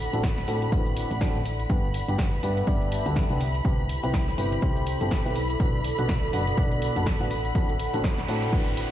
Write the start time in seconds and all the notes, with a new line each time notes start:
Already playing: E4 A4 D5 F#5 B5
0.13 A1 A2 C4 D4 F#4 A4, closed hi-hat, tambourine
0.23 kick, snare, closed hi-hat, tambourine
0.37 snare, tambourine
0.47 A2 C4 D4 F#4 A4, open hi-hat, tambourine
0.62 closed hi-hat, tambourine
0.72 A1 A2 C4 D4 F#4 B4, kick, closed hi-hat, tambourine
0.86 closed hi-hat, tambourine
0.97 open hi-hat, tambourine
1.11 A1, closed hi-hat, tambourine
1.21 A2 C4 D4 F#4 A4, kick, snare, closed hi-hat, tambourine
1.35 A1, closed hi-hat, tambourine
1.45 open hi-hat, tambourine
1.59 closed hi-hat, tambourine
1.69 G1 G2 B3 D4 G4 B4 B5, kick, closed hi-hat, tambourine
1.85 B4, tambourine
1.94 open hi-hat, tambourine
2.01 E5
2.08 G1 G2 B3 D4 G4 B4, closed hi-hat, tambourine
2.19 kick, snare, closed hi-hat, tambourine
2.33 A5, tambourine
2.43 G2 B3 D4 G4 B4, open hi-hat, tambourine
2.57 closed hi-hat, tambourine
2.67 G1 G2 B3 D4 G4 D5, kick, closed hi-hat, tambourine
2.81 closed hi-hat, tambourine
2.92 open hi-hat, tambourine
3.05 D2 G2 B3 D4 G4 A4, closed hi-hat, tambourine
3.16 kick, snare, closed hi-hat, tambourine
3.30 C2 C3 B3 D4 G4 B4, closed hi-hat, tambourine
3.41 E4, open hi-hat, tambourine
3.55 closed hi-hat, tambourine
3.61 C2 C3 C4 E4 G4 A4 B4 G5, kick, closed hi-hat
3.65 tambourine
3.75 D5, tambourine
3.89 open hi-hat, tambourine
4.03 C2 C3 C4 E4 G4 B4, closed hi-hat, tambourine
4.14 kick, snare, closed hi-hat, tambourine
4.28 snare, tambourine
4.38 G1 C3 C4 E4 G4 B4, open hi-hat, tambourine
4.52 closed hi-hat, tambourine
4.62 C2 C3 C4 E4 G4 C5, kick, closed hi-hat, tambourine
4.77 closed hi-hat, tambourine
4.86 open hi-hat, tambourine
5.00 G1 C3 C4 E4 G4 A4, closed hi-hat, tambourine
5.11 kick, snare, closed hi-hat, tambourine
5.25 B1 C4 E4 G4 B4, closed hi-hat, tambourine
5.36 open hi-hat, tambourine
5.50 closed hi-hat, tambourine
5.60 B1 B2 B3 D4 F#4 B4, kick, closed hi-hat, tambourine
5.74 tambourine
5.84 open hi-hat, tambourine
5.98 B1 B2 B3 D4 F#4 B4, closed hi-hat, tambourine
6.08 kick, snare, closed hi-hat, tambourine
6.23 F#5, tambourine
6.33 F#1 B2 B3 D4 F#4 B4, open hi-hat, tambourine
6.47 closed hi-hat, tambourine
6.57 B1 B2 B3 D4 F#4 D5, kick, closed hi-hat, tambourine
6.71 closed hi-hat, tambourine
6.82 open hi-hat, tambourine
6.96 F#1 B2 B3 D4 F#4 A4, closed hi-hat, tambourine
7.06 kick, snare, closed hi-hat, tambourine
7.20 A1 B3 D4 F#4 B4, closed hi-hat, tambourine
7.31 open hi-hat, tambourine
7.45 closed hi-hat, tambourine
7.55 A1 A2 C4 D4 F#4 A4, kick, closed hi-hat, tambourine, noise sweep
7.69 closed hi-hat, tambourine
7.79 open hi-hat, tambourine
7.93 A1 A2 C4 D4 F#4 A4, closed hi-hat, tambourine
8.04 kick, snare, closed hi-hat, tambourine
8.17 snare, closed hi-hat, tambourine
8.28 A2 C4 D4 F#4 A4, open hi-hat, tambourine
8.43 closed hi-hat, tambourine
8.52 A1 A2 C4 D4 F#4 B4, kick, closed hi-hat, tambourine
8.67 closed hi-hat, tambourine
8.77 open hi-hat, tambourine